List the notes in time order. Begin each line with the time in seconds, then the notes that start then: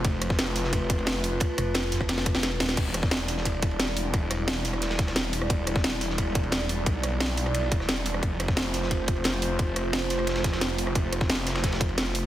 Already playing: A3 F4
0.05 F1 B4, kick, closed hi-hat, ride
0.21 cross-stick, closed hi-hat, ride
0.30 kick, snare
0.39 snare, closed hi-hat, ride
0.56 snare, open hi-hat, ride
0.64 snare
0.73 kick, closed hi-hat, ride
0.90 kick, closed hi-hat, ride
0.99 ride
1.06 snare, closed hi-hat, ride
1.16 snare
1.24 open hi-hat, ride
1.40 kick, closed hi-hat, ride
1.58 F1, cross-stick, closed hi-hat, ride
1.74 snare, closed hi-hat, ride
1.92 snare, open hi-hat, ride
2.01 kick, cross-stick, ride
2.09 snare, closed hi-hat, ride
2.18 snare
2.26 kick, closed hi-hat, ride
2.35 snare
2.41 E1, snare, closed hi-hat, ride
2.60 snare, open hi-hat, ride
2.69 snare
2.77 E1 G3 E4 D5, kick, closed hi-hat, crash, ride
2.94 cross-stick, closed hi-hat, ride
3.03 kick, snare
3.11 snare, closed hi-hat, ride
3.28 snare, open hi-hat, ride
3.37 snare
3.45 kick, closed hi-hat, ride
3.62 kick, closed hi-hat, ride
3.71 ride
3.80 snare, closed hi-hat, ride
3.88 snare
3.96 open hi-hat, ride
4.14 E1, kick, closed hi-hat, ride
4.31 cross-stick, closed hi-hat, ride
4.48 snare, closed hi-hat, ride
4.65 snare, open hi-hat, ride
4.73 cross-stick, ride
4.82 snare, closed hi-hat, ride
4.90 snare, ride
4.99 kick, snare, closed hi-hat, ride
5.07 cross-stick, snare, ride
5.16 snare, closed hi-hat, ride
5.33 open hi-hat, ride
5.42 cross-stick
5.50 E1, kick, closed hi-hat, ride
5.67 cross-stick, closed hi-hat, ride
5.76 kick, snare
5.84 snare, closed hi-hat, ride
6.01 snare, open hi-hat, ride
6.10 snare
6.18 kick, closed hi-hat, ride
6.35 kick, closed hi-hat, ride
6.43 ride
6.52 snare, closed hi-hat, ride
6.61 snare
6.69 open hi-hat, ride
6.86 B1, kick, closed hi-hat, ride
7.03 cross-stick, closed hi-hat, ride
7.20 snare, closed hi-hat, ride
7.37 open hi-hat, ride
7.46 cross-stick, ride
7.54 closed hi-hat, ride
7.72 E1, kick, closed hi-hat, ride
7.80 cross-stick, snare
7.89 snare, closed hi-hat, ride
8.06 open hi-hat, ride
8.14 cross-stick
8.22 F1 A3 F4 C5, kick, closed hi-hat, ride
8.40 cross-stick, closed hi-hat, ride
8.48 kick, snare
8.57 snare, closed hi-hat, ride
8.74 snare, open hi-hat, ride
8.82 snare
8.91 kick, closed hi-hat, ride
9.08 kick, closed hi-hat, ride
9.16 ride
9.24 snare, closed hi-hat, ride
9.34 snare
9.42 open hi-hat, ride
9.59 F1, kick, closed hi-hat, ride
9.76 cross-stick, closed hi-hat, ride
9.93 snare, closed hi-hat, ride
10.10 snare, open hi-hat, ride
10.19 cross-stick, ride
10.27 snare, closed hi-hat, ride
10.35 snare, ride
10.44 kick, snare, closed hi-hat, ride
10.52 cross-stick, snare, ride
10.61 snare, closed hi-hat, ride
10.78 open hi-hat, ride
10.87 cross-stick
10.95 F1, kick, closed hi-hat, ride
11.12 cross-stick, closed hi-hat, ride
11.21 kick, snare
11.29 snare, closed hi-hat, ride
11.47 snare, open hi-hat, ride
11.55 snare, ride
11.63 kick, snare, closed hi-hat, ride
11.72 snare, ride
11.81 kick, closed hi-hat, ride
11.89 ride
11.97 snare, closed hi-hat, ride
12.06 snare
12.15 open hi-hat, ride